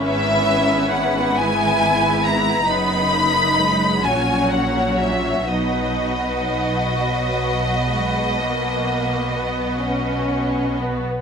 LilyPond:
<<
  \new Staff \with { instrumentName = "Violin section" } { \time 12/8 \key b \major \tempo 4. = 42 e''4 fis''8 gis''4 ais''8 b''4. gis''8 fis''8 e''8 | dis''1~ dis''4. r8 | }
  \new Staff \with { instrumentName = "Violin section" } { \time 12/8 \key b \major << { b'4. b'4. b'4. cis''4. | b'1. | } \\ { e'2. dis'4. fis'4. | fis'1. | } >> }
  \new Staff \with { instrumentName = "Viola section" } { \time 12/8 \key b \major << { cis'4. e'4. dis'4. cis'4. | dis'4. fis4 gis8 ais4 b8 cis'4 b8 | } \\ { b2. b8 ais8 gis8 fis4. | fis4. r1 r8 | } >> }
  \new Staff \with { instrumentName = "Cello section" } { \clef bass \time 12/8 \key b \major gis,2. fis,4. ais,4. | b,1. | }
  \new Staff \with { instrumentName = "Double bass section" } { \clef bass \time 12/8 \key b \major gis,,2. fis,,4. ais,,4. | b,,1. | }
>>